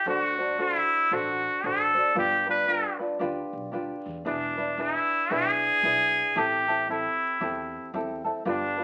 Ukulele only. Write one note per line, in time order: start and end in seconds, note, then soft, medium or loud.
0.06 0.38 D4 medium
0.06 0.38 F#4 medium
0.06 0.38 A4 medium
0.06 0.37 C5 medium
0.38 0.58 D4 soft
0.38 0.58 F#4 soft
0.38 0.59 C5 soft
0.58 1.11 D4 medium
0.58 1.11 F#4 medium
0.58 1.10 A4 medium
0.58 1.12 C5 medium
1.11 1.64 D4 medium
1.11 1.64 F#4 medium
1.11 1.63 A4 medium
1.11 1.64 C5 medium
1.64 1.96 D4 medium
1.64 1.94 F#4 medium
1.64 1.96 A4 soft
1.64 1.93 C5 medium
1.95 2.14 D4 soft
1.95 2.15 F#4 soft
1.95 2.16 C5 soft
2.15 2.47 D4 medium
2.15 2.46 F4 medium
2.15 2.47 G4 medium
2.15 2.45 B4 medium
2.46 2.67 D4 soft
2.46 2.67 F4 soft
2.46 2.68 B4 soft
2.67 3.00 D4 medium
2.67 2.99 F4 medium
2.67 3.00 G4 medium
2.67 2.98 B4 medium
2.99 3.19 D4 soft
2.99 3.20 F4 soft
2.99 3.20 B4 soft
3.19 3.72 D4 medium
3.19 3.72 F4 medium
3.19 3.71 G4 medium
3.19 3.73 B4 medium
3.72 4.25 D4 medium
3.72 4.25 F4 medium
3.72 4.24 G4 medium
3.72 4.25 B4 medium
4.25 4.58 D4 medium
4.25 4.57 E4 medium
4.25 4.57 G#4 medium
4.25 4.56 B4 medium
4.57 4.77 D4 soft
4.57 4.78 E4 soft
4.57 4.78 B4 soft
4.78 5.30 D4 medium
4.78 5.31 E4 medium
4.78 5.29 G#4 medium
4.78 5.30 B4 medium
5.30 5.83 D4 medium
5.30 5.84 E4 medium
5.30 5.82 G#4 medium
5.30 5.84 B4 medium
5.83 6.36 D4 medium
5.83 6.36 E4 medium
5.83 6.35 G#4 soft
5.83 6.36 B4 medium
6.36 6.68 C4 medium
6.36 6.68 E4 medium
6.36 6.68 G4 medium
6.36 6.67 A4 medium
6.68 6.88 C4 soft
6.68 6.89 E4 soft
6.68 6.89 A4 soft
6.88 7.40 C4 medium
6.88 7.40 E4 medium
6.88 7.40 G4 medium
6.88 7.40 A4 medium
7.40 7.93 C4 medium
7.40 7.94 E4 medium
7.40 7.93 G4 medium
7.40 7.94 A4 medium
7.93 8.25 C4 medium
7.93 8.25 E4 medium
7.93 8.26 G4 medium
7.93 8.23 A4 medium
8.24 8.45 C4 soft
8.24 8.46 E4 soft
8.24 8.46 A4 soft
8.45 8.78 D4 medium
8.45 8.77 F4 medium
8.45 8.78 G4 medium
8.45 8.76 B4 medium
8.77 8.84 D4 soft
8.77 8.84 F4 soft
8.77 8.84 B4 soft